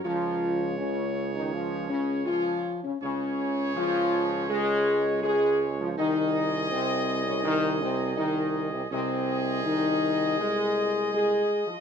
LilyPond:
<<
  \new Staff \with { instrumentName = "Trumpet section" } { \time 4/4 \key des \major \tempo 4 = 81 << { des''1 | des''1 | ees''1 | ees''1 | } \\ { bes'4 aes'2. | aes'1 | aes'1 | aes'1 | } >> }
  \new Staff \with { instrumentName = "French horn section" } { \time 4/4 \key des \major f'4 des'8. ees'16 f'8 des'8 f'8. des'16 | des'4 f'4 aes'4 aes'8. f'16 | ees'4 c'8. des'16 ees'8 c'8 ees'8. c'16 | c'4 ees'4 aes'4 aes'8. f'16 | }
  \new Staff \with { instrumentName = "Trombone section" } { \clef bass \time 4/4 \key des \major f4 des8. ees16 f8 des8 f8. des16 | des4 f4 aes4 aes8. f16 | ees4 c8. des16 ees8 c8 ees8. c16 | c4 ees4 aes4 aes8. f16 | }
  \new Staff \with { instrumentName = "Tuba" } { \clef bass \time 4/4 \key des \major des,2.~ des,8 r8 | des,1 | c,1 | c,2.~ c,8 r8 | }
>>